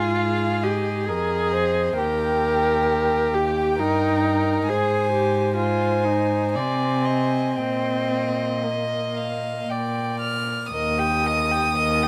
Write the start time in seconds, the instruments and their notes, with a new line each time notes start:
Already playing: cello G#2, viola F4, violin G#4 G#5
0.19 violin F5
0.63 viola G4, violin D#5
1.06 cello F2, viola G#4, violin A#4 D#5
1.53 violin C5
1.96 cello D#2, violin G4 G5, viola A#4
2.91 violin G5
3.34 viola G4
3.78 cello G2, viola D#4, violin A#4
4.22 violin A#4
4.68 cello G#2, viola G#4, violin C5 G#5
5.13 viola G4
5.57 viola F4, violin C5 G#5
6.05 viola D#4
6.54 cello C3, viola C4, violin D5 G#5
7.05 violin D#5
7.57 cello A#2, viola C4, violin D#5 G5
8.64 viola A#3, violin D#5
9.17 violin F5
9.69 cello A#2, violin D5 G5
10.20 violin F6
10.71 cello D#2, viola A#4, violin D#5 D#6
10.98 viola G4, violin G5
11.23 viola A#4, violin D#5
11.51 viola G4, violin G5
11.77 cello D#2, viola A#4, violin D#5
12.03 viola G4, violin G5